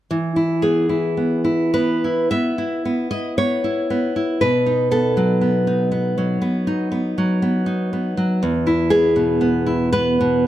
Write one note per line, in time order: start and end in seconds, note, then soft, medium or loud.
0.11 2.27 E3 soft
0.36 0.88 E4 soft
0.62 1.16 B3 soft
0.62 1.70 G#4 medium
0.89 1.43 E4 soft
1.17 1.73 B3 soft
1.44 2.03 E4 soft
1.74 2.31 B3 soft
1.74 2.29 B4 medium
2.04 2.57 E4 soft
2.31 2.84 B3 soft
2.31 3.07 E5 medium
2.58 3.10 E4 soft
2.85 3.37 B3 soft
3.11 3.63 E4 soft
3.11 3.37 D#5 medium
3.38 3.89 B3 soft
3.38 4.37 C#5 medium
3.64 4.15 E4 soft
3.90 4.41 B3 soft
4.16 4.41 E4 soft
4.41 6.37 B2 soft
4.41 4.89 B4 medium
4.66 5.66 D#4 soft
4.91 5.40 B3 soft
4.91 7.88 A4 medium
5.17 6.16 F#3 soft
5.41 5.90 B3 soft
5.67 6.66 D#4 soft
5.92 6.40 B3 soft
6.18 7.17 F#3 soft
6.42 6.90 B3 soft
6.67 7.65 D#4 soft
6.92 7.41 B3 soft
7.18 8.16 F#3 soft
7.42 7.92 B3 soft
7.66 8.42 D#4 soft
7.93 8.42 B3 soft
8.17 8.42 F#3 soft
8.43 10.44 E2 medium
8.67 9.65 E4 soft
8.90 9.40 B3 soft
8.90 9.89 G#4 medium
9.16 10.19 B2 soft
9.41 9.92 B3 soft
9.66 9.92 E4 soft
9.93 10.46 B3 soft
9.93 10.45 B4 medium
10.21 10.47 B2 soft